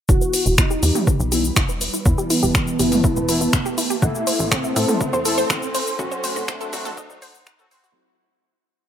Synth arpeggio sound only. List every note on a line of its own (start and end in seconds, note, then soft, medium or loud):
0.09 0.19 E4 loud
0.21 0.27 B4 medium
0.34 0.45 B4 medium
0.46 0.52 E4 medium
0.58 0.68 B3 medium
0.71 0.76 G4 loud
0.83 0.93 E4 medium
0.95 1.05 G4 loud
1.07 1.17 B4 medium
1.32 1.38 G4 medium
1.56 1.66 E4 loud
1.69 1.75 B4 medium
1.81 1.93 B4 medium
1.94 1.99 E4 medium
2.06 2.16 B3 medium
2.18 2.24 G4 loud
2.30 2.40 E4 medium
2.43 2.52 G4 loud
2.55 2.65 B4 medium
2.79 2.85 G4 medium
3.04 3.14 E4 loud
3.17 3.22 B4 medium
3.29 3.40 B4 medium
3.41 3.47 E4 medium
3.53 3.63 B3 medium
3.66 3.71 G4 loud
3.78 3.88 E4 medium
3.90 4.00 G4 loud
4.02 4.12 F#5 medium
4.27 4.33 C5 medium
4.52 4.62 A4 loud
4.64 4.70 E5 medium
4.76 4.88 E5 medium
4.89 4.94 A4 medium
5.01 5.11 E4 medium
5.13 5.19 C5 loud
5.25 5.35 A4 medium
5.38 5.47 C5 loud
5.50 5.60 F#5 medium
5.74 5.80 C5 medium
5.99 6.09 F#4 loud
6.12 6.17 C5 medium
6.24 6.36 C5 medium
6.36 6.42 F#4 medium
6.48 6.58 C4 medium
6.61 6.67 A4 loud
6.73 6.83 F#4 medium
6.85 6.95 A4 loud
6.97 7.07 D#5 medium
7.22 7.34 C5 medium
7.47 7.58 F#5 medium
7.59 7.65 A4 medium
7.71 7.81 C5 loud
7.84 7.93 F#4 loud